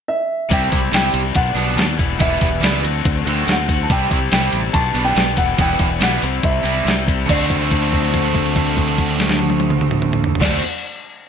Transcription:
0.08 E5
0.49 C2 C3 G3 C4 E4 G5, kick, closed hi-hat
0.70 C2 G3 C4 E4, kick, closed hi-hat
0.91 C2 C3 G3 C4 E4 G5, snare, closed hi-hat
1.14 C2, closed hi-hat
1.33 B1 B2 G3 B3 D4 F#5, kick, closed hi-hat
1.55 B1 B2 G3 B3 D4, closed hi-hat
1.76 D#2 B2 G3 B3 D4, snare, closed hi-hat
1.98 E1 E3 G3 B3 E4, kick, closed hi-hat
2.18 E1 E3 G3 B3 E4 E5, kick, closed hi-hat
2.41 E1 G3 B3 E4, kick, closed hi-hat
2.62 C#2 E3 G3 B3 E4 D5, snare, closed hi-hat
2.83 D2 D3 A3 C4 F#4, closed hi-hat
3.05 D2, kick, closed hi-hat
3.25 D2 D3 A3 C4 F#4, closed hi-hat
3.47 D2 D3 A3 C4 F#4, snare, closed hi-hat
3.52 F#5
3.68 A3 C4 F#4, kick, closed hi-hat
3.83 A5
3.89 C2 C3 G3 C4 E4 G5, kick, closed hi-hat
4.11 C2 G3 C4 E4, kick, closed hi-hat
4.32 C2 C3 G3 C4 E4 G5, snare, closed hi-hat
4.53 A1, closed hi-hat
4.73 B1 B2 G3 B3 D4 A5, kick, closed hi-hat
4.94 B1 B2 G3 B3 D4, closed hi-hat
5.05 G5
5.15 B1 B2 G3 B3 D4, snare, closed hi-hat
5.36 E1 E3 G3 B3 E4 F#5, kick, closed hi-hat
5.57 E1 E3 G3 B3 E4 G5, kick, closed hi-hat
5.79 E1 G3 B3 E4, kick, closed hi-hat
6.00 B1 E3 G3 B3 F#5, snare, closed hi-hat
6.04 E4
6.22 C2 C3 G3 C4 E4, closed hi-hat
6.43 C2 E5, kick, closed hi-hat
6.64 C2 C3 G3 C4 E4, closed hi-hat
6.85 C2 C3 G3 C4 E4, snare, closed hi-hat
7.05 G3 C4 E4, kick, closed hi-hat
7.26 D2 D3 A3 C4 F#4 C5 D5, kick, crash
7.50 kick, crash
7.62 crash
7.71 kick, crash
7.83 crash
7.93 kick, crash
8.04 crash
8.14 kick, crash
8.24 crash
8.35 kick, crash
8.46 crash
8.56 kick, crash
8.67 crash
8.77 kick, crash
8.88 crash
8.98 kick, crash
9.09 crash
9.20 snare
9.29 snare
9.39 high tom
9.50 high tom
9.60 high tom
9.70 mid tom
9.81 mid tom
9.91 mid tom
10.02 mid tom
10.13 mid tom
10.24 floor tom
10.35 floor tom
10.40 D2 D3 A3 C4 F#4 D5, kick, snare, crash
10.44 C5

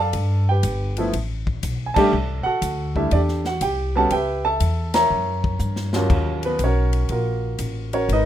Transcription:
Already playing: F#2 A5
0.00 A4 D5 F5
0.13 G2, kick, ride
0.49 G4 B4 G5
0.63 G1, kick, hi-hat pedal, ride
0.97 F3 A3 B3 E4, ride
1.13 A1, kick, ride
1.47 kick
1.63 B1, kick, hi-hat pedal, ride
1.86 G#5
1.94 G3 A3 D4 G4 A4 D5 E5 A5, muted upright bass stroke, kick, crash
2.13 C2
2.43 F#4 A4 F#5, muted upright bass stroke
2.62 D2, kick, hi-hat pedal, ride
2.96 G3 A3 D4 E4 E5, kick
3.11 E2 D4 G4 A4 D5, kick, ride
3.28 snare
3.45 F#5, snare
3.49 F#4
3.61 C2 G4 G5, kick, hi-hat pedal, ride
3.95 G3 B3 C#4 F#4 A4 A5
4.10 C#2 G4 B4 E5 G5, kick, ride
4.45 A4 E5 A5
4.60 E2, kick, hi-hat pedal, ride
4.94 A#4 C#5 E5 A#5, snare, ride
5.10 F#2
5.44 kick
5.59 G2, hi-hat pedal
5.76 snare
5.93 D#2 F#3 A#3 C#4 F4, snare
6.10 D#2, kick, crash
6.43 B3 B4, ride
6.59 B1, kick, hi-hat pedal, ride
6.64 C#4 F#4 A#4 C#5
6.93 ride
7.09 A#1 A#3 F4 F#4 A#4, kick, ride
7.59 A1, kick, hi-hat pedal, ride
7.93 C#4 F#4 A#4 C#5, ride
8.09 G#1, kick, ride
8.13 D#4 A#4 B4 D#5

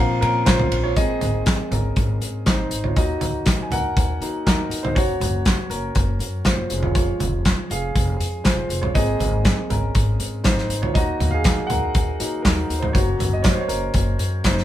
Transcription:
Already playing: A#1 F3 A#3 C4 A#4 F5
0.21 A#2 C#4 A#4, ride
0.45 A#1 F4 C5, kick, snare, clap, ride
0.59 floor tom
0.72 A#1, ride
0.84 F4 C#5
0.96 G#3 A#3 C4 G#4 D#5, kick, closed hi-hat
1.21 G#1, closed hi-hat, floor tom
1.46 kick, snare, clap, closed hi-hat
1.71 G#1 C#4 A#4, closed hi-hat, floor tom
1.96 G#1, kick, closed hi-hat
2.21 G#2, closed hi-hat
2.46 G#1 D#4 C5, kick, snare, clap, closed hi-hat
2.71 G#1, closed hi-hat
2.84 F4 C#5, floor tom
2.96 D#2 F#3 A#3 D#4 F#4 D#5, kick, closed hi-hat
3.21 D#2, closed hi-hat, floor tom
3.46 kick, snare, clap, closed hi-hat
3.62 G#5
3.71 D#2 A#4 F#5, closed hi-hat, floor tom
3.96 D#2, kick, closed hi-hat
4.21 D#3 F#3 A#3 D#4, closed hi-hat
4.46 D#2 D#4 A#4, kick, snare, clap, closed hi-hat
4.70 D#2, closed hi-hat
4.83 D#4 C5, floor tom
4.95 F#1 F#3 A#3 C#4 F#4 C#5, kick, closed hi-hat
5.20 F#1, closed hi-hat, floor tom
5.45 kick, snare, clap, closed hi-hat
5.70 F#1 C#4 A#4, closed hi-hat
5.95 F#1, kick, closed hi-hat
6.19 F#2, closed hi-hat
6.45 F#1 F4 C5, kick, snare, clap, closed hi-hat
6.70 F1 F3 G#3 C#4, closed hi-hat
6.83 F4 C#5, floor tom
6.95 F4 C#5, kick, closed hi-hat
7.20 F1, closed hi-hat, floor tom
7.45 kick, snare, clap, closed hi-hat
7.70 F1 G#4 F5, closed hi-hat
7.95 F1, kick, closed hi-hat
8.20 F2, closed hi-hat
8.44 F1 F4 C5, kick, snare, clap, closed hi-hat
8.69 F1, closed hi-hat
8.82 F4 C#5, floor tom
8.94 G#1 G#3 A#3 C4 G#4 D#5, kick, closed hi-hat
9.20 G#1, closed hi-hat, floor tom
9.45 kick, snare, clap, closed hi-hat
9.70 G#1 C#4 A#4, closed hi-hat, floor tom
9.95 G#1, kick, closed hi-hat
10.20 G#2, closed hi-hat
10.44 G#1 D#4 C5, kick, snare, clap, closed hi-hat
10.58 snare
10.69 G#1, closed hi-hat
10.82 F4 C#5, floor tom
10.94 D#2 F#3 A#3 D#4 F#4 D#5, kick, closed hi-hat
11.20 D#2, closed hi-hat, floor tom
11.31 G#4 F5
11.44 kick, snare, clap, closed hi-hat
11.67 D#2 F#5, closed hi-hat, floor tom
11.71 A#4
11.95 D#2, kick, closed hi-hat
12.19 D#3 F#3 A#3 D#4, closed hi-hat
12.42 D#2 A#4, kick, snare, clap, closed hi-hat
12.47 D#4
12.70 D#2, closed hi-hat
12.79 C5, floor tom
12.84 D#4
12.93 F#1 F#3 A#3 C#4 F#4 C#5, kick, closed hi-hat
13.19 F#1, closed hi-hat, floor tom
13.33 D#5
13.42 C#5, kick, snare, clap, closed hi-hat
13.52 C5
13.61 C#5
13.68 F#1 C#4 A#4, closed hi-hat
13.94 F#1, kick, closed hi-hat
14.19 F#2, closed hi-hat
14.44 F#1 D#4 C5, kick, snare, clap, closed hi-hat
14.58 snare

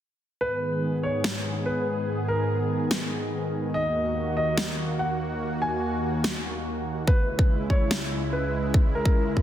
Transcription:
0.41 G#2 D#3 B3 G#4 B4
1.03 C#5
1.24 snare
1.66 B4
2.28 A#4
2.91 snare
3.74 D#2 A#3 F#4 D#5
4.37 D#5
4.57 snare
4.99 F#5
5.62 G#5
6.24 snare
7.07 C#2 C#3 G#3 E4 B4, kick
7.39 kick
7.70 C#5, kick
7.91 snare
8.33 B4
8.74 kick
8.95 A#4
9.05 kick
9.37 kick

